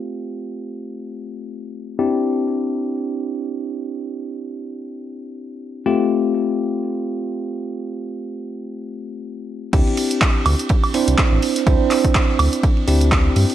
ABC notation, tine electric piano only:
X:1
M:4/4
L:1/8
Q:"Swing 16ths" 1/4=124
K:Dm
V:1 name="Tine electric piano"
[A,CFG]8 | [CDEG]8- | [CDEG]8 | [A,CFG]8- |
[A,CFG]8 | [CDEG]4- [CDEG] [CDEc]3 | [CDEc]4- [CDEc] [CDEG]3 |]